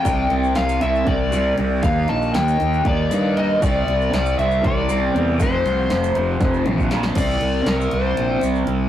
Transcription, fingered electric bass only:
0.06 0.27 C2 medium
0.31 0.53 C2 medium
0.57 0.79 C2 medium
0.83 1.04 C2 medium
1.07 1.51 C2 medium
1.59 1.80 C2 medium
1.83 2.05 D#2 medium
2.10 2.31 A#1 medium
2.36 2.57 D#2 medium
2.61 2.82 D#2 medium
2.86 3.07 D#2 medium
3.11 3.55 G2 medium
3.62 3.84 C2 medium
3.87 4.09 C2 medium
4.13 4.34 C2 medium
4.39 4.60 C2 medium
4.65 5.08 C2 medium
5.15 5.42 E2 medium
5.40 5.62 F1 medium
5.66 5.87 C2 medium
5.91 6.12 F1 medium
6.16 6.37 F1 medium
6.41 6.63 F1 medium
6.66 7.09 A#1 medium
7.16 7.36 C2 medium
7.41 7.61 C2 medium
7.66 7.86 C2 medium
7.93 8.12 C2 medium
8.18 8.37 A#1 medium
8.43 8.62 C2 medium
8.68 8.87 C2 medium

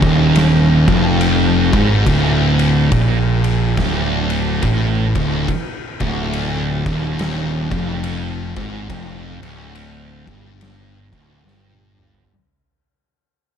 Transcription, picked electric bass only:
0.02 0.84 D#1 loud
0.88 1.69 F1 loud
1.73 2.04 G#1 loud
2.06 2.88 D1 medium
2.92 3.73 A#1 medium
3.78 4.59 D1 loud
4.63 5.11 A1 medium
5.15 5.46 D1 medium
6.01 6.82 D1 loud
6.86 7.67 D#1 loud
7.72 8.53 F1 medium
8.56 8.87 G#1 loud
8.89 9.38 F1 medium
9.41 10.23 D1 loud
10.27 11.08 G1 loud
11.13 11.43 D1 medium
11.45 12.26 G1 loud

